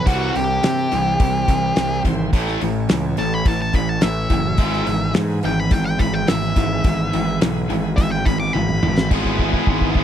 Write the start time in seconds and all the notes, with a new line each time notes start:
0.06 C2 C3 E3 G3 C4 E4 F#4 C5, kick, open hi-hat
0.34 C2 C3 E3 G4, open hi-hat
0.63 C3 E3, snare, open hi-hat
0.92 C2 C3 E3, open hi-hat
1.20 C2 C3 E3, kick, open hi-hat
1.48 C2 C3 E3, kick, open hi-hat
1.76 C2 C3 E3, snare, open hi-hat
2.05 G#1 C3 E3, kick, open hi-hat
2.33 A1 A2 E3 A3 C#4 E4 C#5, kick, open hi-hat
2.48 snare
2.61 A1 A2 E3, open hi-hat
2.89 C#2 A2 E3, snare, open hi-hat
3.17 A1 A2 E3 A5, open hi-hat
3.34 B5
3.46 A1 A2 E3 A5, kick, open hi-hat
3.62 A5
3.73 A1 A2 E3 B5, kick, open hi-hat
3.89 A5
4.01 A1 A2 E3 E5, snare, open hi-hat
4.30 F#1 A2 E3, kick, open hi-hat
4.58 G#1 G#2 E3 G#3 B3 E4 B4, kick, open hi-hat
4.73 snare
4.87 G#1 G#2 E3, open hi-hat
5.14 G#2 E3, snare, open hi-hat
5.43 G#1 G#2 E3 G5, open hi-hat
5.60 B5
5.71 G#1 G#2 E3 G5, kick, open hi-hat
5.86 G5
5.99 G#1 G#2 E3 B5, kick, open hi-hat
6.14 G5
6.28 G#1 G#2 E3 E5, snare, open hi-hat
6.56 G#1 G#2 E3, kick, open hi-hat
6.84 G#1 G#2 E3 G#3 B3 E4 B4, kick, open hi-hat
7.13 G#1 G#2 E3, open hi-hat
7.41 B1 G#2 E3, snare, open hi-hat
7.69 G#1 G#2 E3, open hi-hat
7.97 G#1 G#2 E3 E5, kick, open hi-hat
8.12 G5
8.26 G#1 G#2 E3 B5, kick, open hi-hat
8.40 D6
8.53 G#1 G#2 E3 B5, high tom
8.69 mid tom
8.81 G#1 G#2 E3 A3 B3, mid tom
8.87 C4 D4
8.92 E4 F4
8.98 G4 A4, snare
9.03 B4 C5
9.09 G#1 G#2 E3 G#3 B3 E4 B4 D5, kick, crash
9.14 E4 G#4
9.25 kick
9.39 G#2 E3 G#3 B3 E4 G#4, kick
9.53 G#3 B3 E4 G#4, kick
9.67 G#1 G#2 E3 G#3 B3 E4 G#4, kick
9.81 kick
9.95 G#2 E3 G#3 B3 G#4, kick
9.99 E4